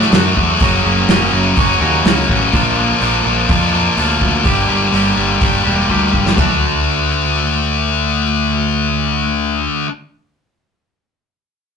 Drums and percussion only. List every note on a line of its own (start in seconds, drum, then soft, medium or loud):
0.01 snare soft
0.12 snare loud
0.12 open hi-hat soft
0.37 kick medium
0.60 kick loud
0.60 open hi-hat soft
1.08 snare medium
1.08 open hi-hat soft
1.57 kick loud
1.57 open hi-hat soft
2.05 snare loud
2.05 open hi-hat soft
2.29 kick medium
2.53 kick medium
2.53 open hi-hat soft
3.01 open hi-hat soft
3.49 kick loud
3.49 open hi-hat soft
3.98 open hi-hat soft
4.21 kick medium
4.45 kick medium
4.45 open hi-hat soft
4.94 open hi-hat soft
5.41 kick loud
5.41 open hi-hat soft
5.89 kick soft
6.13 kick medium
6.26 snare medium
6.37 kick medium
6.37 floor tom medium
6.37 splash medium